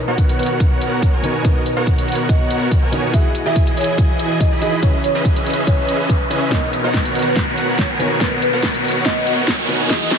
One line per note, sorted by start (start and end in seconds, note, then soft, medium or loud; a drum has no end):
0.00 1.20 B2 medium
0.00 3.10 D#3 medium
0.00 1.21 B3 medium
0.00 3.10 B3 medium
0.00 1.22 D#4 medium
0.00 1.22 A#4 medium
0.00 3.10 A#4 medium
0.00 riser medium
0.08 1.11 B3 medium
0.08 1.11 F#4 medium
0.08 1.11 A#4 medium
0.08 1.11 C#5 medium
0.08 0.28 D#5 loud
0.08 1.11 F#5 loud
0.18 kick medium
0.18 closed hi-hat medium
0.29 closed hi-hat medium
0.39 0.59 B4 medium
0.39 closed hi-hat soft
0.43 closed hi-hat medium
0.46 closed hi-hat medium
0.60 kick loud
0.60 closed hi-hat medium
0.81 closed hi-hat medium
1.02 1.16 C#5 medium
1.02 kick loud
1.02 closed hi-hat medium
1.13 1.42 B3 medium
1.13 1.42 F#4 medium
1.13 1.42 A#4 medium
1.13 1.42 C#5 medium
1.13 1.42 G#5 medium
1.23 1.41 B2 medium
1.23 1.42 B3 medium
1.23 1.43 D#4 medium
1.23 1.43 A#4 medium
1.23 1.37 C#5 medium
1.23 closed hi-hat medium
1.43 2.89 B2 medium
1.43 2.90 B3 medium
1.43 1.60 B3 medium
1.43 2.91 D#4 medium
1.43 1.60 F#4 medium
1.43 1.60 A#4 medium
1.43 1.58 B4 medium
1.43 1.60 C#5 medium
1.43 1.60 D#5 loud
1.43 kick loud
1.43 closed hi-hat medium
1.47 2.91 A#4 medium
1.66 1.86 B4 medium
1.66 closed hi-hat medium
1.77 2.80 B3 loud
1.77 2.80 F#4 medium
1.77 2.80 A#4 medium
1.77 2.80 C#5 medium
1.77 2.80 F#5 loud
1.87 kick medium
1.87 closed hi-hat medium
1.98 closed hi-hat medium
2.08 closed hi-hat soft
2.12 closed hi-hat medium
2.15 closed hi-hat medium
2.29 2.56 D#5 loud
2.29 kick loud
2.29 closed hi-hat medium
2.51 closed hi-hat medium
2.71 kick loud
2.71 closed hi-hat medium
2.82 3.11 B3 medium
2.82 3.11 F#4 medium
2.82 3.11 A#4 medium
2.82 3.11 C#5 medium
2.82 3.11 G#5 medium
2.92 3.11 B2 medium
2.92 3.11 B3 medium
2.92 3.12 D#4 medium
2.92 3.12 B4 medium
2.92 closed hi-hat medium
3.12 4.58 E3 medium
3.12 3.29 E3 medium
3.12 6.48 E3 medium
3.12 3.29 E4 medium
3.12 4.81 F#4 medium
3.12 4.60 F#4 medium
3.12 3.29 G#4 medium
3.12 4.81 G#4 medium
3.12 4.59 D#5 medium
3.12 3.29 D#5 medium
3.12 4.81 D#5 medium
3.12 3.33 E5 loud
3.12 3.29 F#5 loud
3.12 kick medium
3.12 closed hi-hat medium
3.16 4.60 G#4 medium
3.35 closed hi-hat medium
3.46 4.49 E3 medium
3.46 4.49 E4 medium
3.46 4.49 G#4 medium
3.46 4.49 D#5 medium
3.46 3.66 E5 medium
3.46 4.49 G#5 loud
3.56 kick loud
3.56 closed hi-hat medium
3.67 closed hi-hat medium
3.77 3.97 C#5 loud
3.77 closed hi-hat soft
3.81 closed hi-hat medium
3.84 closed hi-hat medium
3.98 kick loud
3.98 closed hi-hat medium
4.19 closed hi-hat medium
4.40 4.54 D#5 medium
4.40 kick medium
4.40 closed hi-hat medium
4.52 4.80 E3 medium
4.52 4.80 E4 medium
4.52 4.80 G#4 medium
4.52 4.80 D#5 medium
4.52 4.80 B5 loud
4.60 4.80 E3 medium
4.60 4.80 D#4 medium
4.60 4.80 F#4 medium
4.60 4.81 G#4 medium
4.60 4.75 D#5 medium
4.60 closed hi-hat medium
4.81 6.27 C#3 medium
4.81 6.28 C#4 medium
4.81 6.50 C#4 medium
4.81 4.98 C#4 medium
4.81 6.29 E4 medium
4.81 4.98 G#4 medium
4.81 6.50 B4 medium
4.81 4.98 B4 medium
4.81 4.96 C#5 medium
4.81 4.98 D#5 medium
4.81 4.98 E5 loud
4.81 kick loud
4.81 closed hi-hat medium
4.85 6.29 B4 medium
5.04 5.24 C#5 loud
5.04 closed hi-hat medium
5.15 6.18 C#4 loud
5.15 6.18 G#4 medium
5.15 6.18 B4 medium
5.15 6.18 D#5 medium
5.15 6.18 E5 loud
5.25 kick loud
5.25 closed hi-hat medium
5.36 closed hi-hat medium
5.46 closed hi-hat soft
5.50 closed hi-hat medium
5.53 closed hi-hat medium
5.67 5.94 C#5 medium
5.67 kick loud
5.67 closed hi-hat medium
5.89 closed hi-hat medium
6.09 kick loud
6.09 closed hi-hat medium
6.30 6.49 C#3 medium
6.30 6.49 C#4 medium
6.30 6.50 E4 medium
6.30 6.49 G#4 medium
6.30 6.49 B4 medium
6.30 6.50 C#5 medium
6.30 6.49 D#5 medium
6.30 6.49 E5 loud
6.30 closed hi-hat medium
6.50 7.96 B2 medium
6.50 9.86 D#3 medium
6.50 7.97 B3 medium
6.50 6.67 B3 medium
6.50 9.86 B3 medium
6.50 7.98 D#4 medium
6.50 6.67 F#4 medium
6.50 6.67 A#4 medium
6.50 9.86 A#4 medium
6.50 7.98 A#4 medium
6.50 6.67 C#5 medium
6.50 6.67 D#5 loud
6.50 6.72 D#5 loud
6.50 kick loud
6.50 snare soft
6.50 closed hi-hat medium
6.73 closed hi-hat medium
6.84 7.87 B3 loud
6.84 7.87 F#4 medium
6.84 7.87 A#4 medium
6.84 7.87 C#5 medium
6.84 7.04 D#5 loud
6.84 7.87 F#5 loud
6.94 kick loud
6.94 snare soft
6.94 closed hi-hat medium
7.05 closed hi-hat medium
7.15 7.35 B4 loud
7.15 closed hi-hat soft
7.19 closed hi-hat medium
7.22 closed hi-hat medium
7.36 kick loud
7.36 snare medium
7.36 closed hi-hat medium
7.58 closed hi-hat medium
7.78 7.92 C#5 medium
7.78 kick loud
7.78 snare medium
7.78 closed hi-hat medium
7.90 8.19 B3 medium
7.90 8.19 F#4 medium
7.90 8.19 A#4 medium
7.90 8.19 C#5 medium
7.90 8.19 G#5 medium
7.99 8.17 B2 medium
7.99 8.18 B3 medium
7.99 8.19 D#4 medium
7.99 8.19 A#4 medium
7.99 8.13 C#5 medium
7.99 closed hi-hat medium
8.19 9.65 B2 medium
8.19 9.66 B3 medium
8.19 8.36 B3 medium
8.19 9.67 D#4 medium
8.19 8.36 F#4 medium
8.19 8.36 A#4 medium
8.19 9.67 A#4 medium
8.19 8.34 B4 medium
8.19 8.36 C#5 medium
8.19 8.36 D#5 loud
8.19 kick loud
8.19 snare medium
8.19 closed hi-hat medium
8.42 8.62 B4 loud
8.42 closed hi-hat medium
8.53 9.56 B3 medium
8.53 9.56 F#4 medium
8.53 9.56 A#4 medium
8.53 9.56 C#5 medium
8.53 9.56 F#5 loud
8.63 kick loud
8.63 snare medium
8.63 closed hi-hat medium
8.75 closed hi-hat medium
8.85 closed hi-hat soft
8.88 closed hi-hat medium
8.92 closed hi-hat medium
9.05 9.32 D#5 loud
9.05 kick loud
9.05 snare medium
9.05 closed hi-hat medium
9.27 closed hi-hat medium
9.48 kick loud
9.48 snare medium
9.48 closed hi-hat medium
9.59 9.87 B3 medium
9.59 9.88 F#4 medium
9.59 9.87 A#4 medium
9.59 9.87 C#5 medium
9.59 9.87 G#5 medium
9.68 9.87 B2 medium
9.68 9.87 B3 medium
9.68 9.88 D#4 medium
9.68 9.88 B4 medium
9.68 closed hi-hat medium
9.88 10.18 E3 medium
9.88 10.05 E3 medium
9.88 10.18 E3 medium
9.88 10.05 E4 medium
9.88 10.18 F#4 medium
9.88 10.05 G#4 medium
9.88 10.18 G#4 medium
9.88 10.18 D#5 medium
9.88 10.10 D#5 loud
9.88 10.05 D#5 medium
9.88 10.18 D#5 medium
9.88 10.05 F#5 loud
9.88 kick loud
9.88 snare medium
9.88 closed hi-hat medium
10.11 snare medium
10.11 closed hi-hat medium